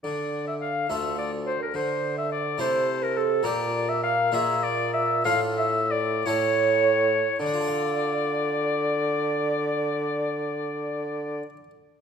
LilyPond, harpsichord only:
\new Staff \with { instrumentName = "Harpsichord" } { \time 6/8 \key d \minor \tempo 4. = 62 d4. <d, a f' a'>4. | d4. <c a e' a'>4. | <bes, bes d' g'>4. <bes, bes f' gis'>4. | <a, d' f' a'>4. <a, e' g' a'>4. |
<d d' f' a' f''>2.~ | <d d' f' a' f''>2. | }